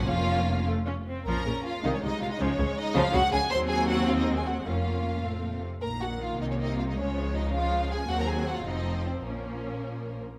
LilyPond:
<<
  \new Staff \with { instrumentName = "Violin section" } { \time 6/8 \key bes \minor \tempo 4. = 104 f''4. r4. | bes''4 f''8 ees''16 des''16 ees''8 f''16 ees''16 | des''4 ees''8 f''8 ges''8 aes''8 | c'''8 aes''8 ges''8 f''16 ees''8 aes''16 ges''8 |
f''2~ f''8 r8 | bes''8 ges''8 f''8 ees''16 des''16 ees''8 f''16 ees''16 | des''4 ees''8 f''4 aes''8 | ges''16 bes''16 aes''8 ges''16 f''16 ees''4 c''8 |
bes'2~ bes'8 r8 | }
  \new Staff \with { instrumentName = "Violin section" } { \time 6/8 \key bes \minor f'4. r4. | bes'4 f'8 ees'16 des'16 ees'8 f'16 ees'16 | des'4 ees'8 f'8 ges'8 aes'8 | c''8 aes'8 ges'8 f'16 ees'8 aes'16 ges'8 |
f'2~ f'8 r8 | bes'8 ges'8 f'8 ees'16 des'16 ees'8 f'16 ees'16 | des'4 ees'8 f'4 aes'8 | ges'16 bes'16 aes'8 ges'16 f'16 ees'4 c'8 |
bes2~ bes8 r8 | }
  \new Staff \with { instrumentName = "Viola section" } { \clef bass \time 6/8 \key bes \minor << { des'4. a8 des'8 c'8 | des'4. aes4.~ | aes2. | c'2. |
des'4. c'4 r8 | bes2. | aes4. aes4. | c'4. c'4. |
des'2~ des'8 r8 | } \\ { bes4. r4. | f8 des8 r8 ees8 c8 c8 | f8 des8 r8 f8 des8 des8 | ges2 aes4 |
bes4. a4 r8 | ees2. | f4. f4. | ges4. f4. |
f2~ f8 r8 | } >> }
  \new Staff \with { instrumentName = "Cello section" } { \clef bass \time 6/8 \key bes \minor f4. r4. | bes,8 bes,8 r8 c8 c8 c8 | des8 des8 r8 des8 des8 des8 | ees,2. |
f,4. a,8 bes,8 c8 | bes,4. c4. | des2. | ees,4. f,4. |
bes,2~ bes,8 r8 | }
  \new Staff \with { instrumentName = "Double bass section" } { \clef bass \time 6/8 \key bes \minor f,,2~ f,,8 r8 | bes,,8 bes,,8 r8 c,8 c,8 c,8 | des,8 des,8 r8 des,8 des,8 des,8 | ees,2. |
f,,2~ f,,8 r8 | bes,,4. c,4. | des,2. | ees,4. f,,4. |
bes,,2~ bes,,8 r8 | }
>>